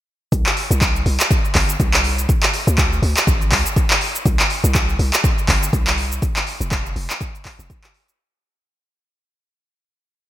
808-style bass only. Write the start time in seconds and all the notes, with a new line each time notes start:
0.32 C2
0.71 C2
1.06 C2
1.55 G1
1.80 C2
2.67 D2
3.02 D2
3.27 A1
3.52 D2
4.26 C2
4.64 C2
4.99 C2
5.48 G1
5.73 C2
6.61 F1
6.96 F1
7.59 F1